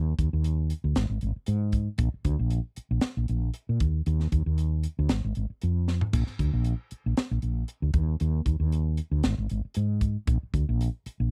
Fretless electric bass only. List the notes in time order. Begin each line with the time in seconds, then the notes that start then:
Already playing: D#2
0.19 D#2
0.33 D#2
0.84 D2
0.96 G#1
1.09 G#1
1.23 G#1
1.36 muted fretless electric bass stroke
1.48 G#2
1.98 A#1
2.14 muted fretless electric bass stroke
2.25 D2
2.39 A#1
2.77 muted fretless electric bass stroke
2.91 A#1
3.17 A#1
3.29 A#1
3.69 A#2
3.80 D#2
4.07 D#2
4.32 D#2
4.46 D#2
4.99 D2
5.11 G#1
5.24 G#1
5.37 G#1
5.50 muted fretless electric bass stroke
5.63 F2
6.13 A#1
6.28 muted fretless electric bass stroke
6.39 D2
6.53 A#1
6.92 muted fretless electric bass stroke
7.06 A#1
7.18 muted fretless electric bass stroke
7.31 A#1
7.43 A#1
7.82 D2
7.94 D#2
8.21 D#2
8.46 D#2
8.60 D#2
9.11 D2
9.25 G#1
9.38 G#1
9.51 G#1
9.65 muted fretless electric bass stroke
9.77 G#2
10.27 A#1
10.43 muted fretless electric bass stroke
10.54 D2
10.69 A#1
11.06 muted fretless electric bass stroke
11.20 A#1